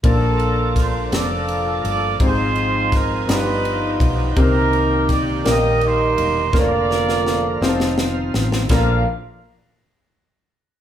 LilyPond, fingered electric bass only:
\new Staff \with { instrumentName = "Fingered electric bass" } { \clef bass \time 6/8 \key bes \major \tempo 4. = 55 bes,,4. f,,4 g,,8 | aes,,4. g,,4 b,,8 | c,4. bes,,4 e,,8 | f,,4. f,,4 a,,8 |
bes,,8 r2 r8 | }